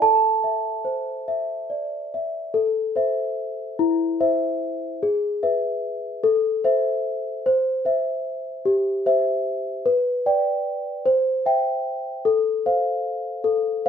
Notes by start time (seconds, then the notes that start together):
0.02 A4 A5
0.44 E5
0.85 C5
1.28 E5
1.70 D5
2.14 E5
2.54 A4
2.96 C5 E5
3.79 E4
4.21 C5 E5
5.03 G#4
5.43 B4 E5
6.24 A4
6.64 C5 E5
7.46 C5
7.85 C5 E5
8.65 G4
9.06 C5 E5
9.86 B4
10.26 D5 G5
11.06 C5
11.46 E5 G5
12.25 A4
12.66 C5 F5
13.44 A4
13.86 C5 F5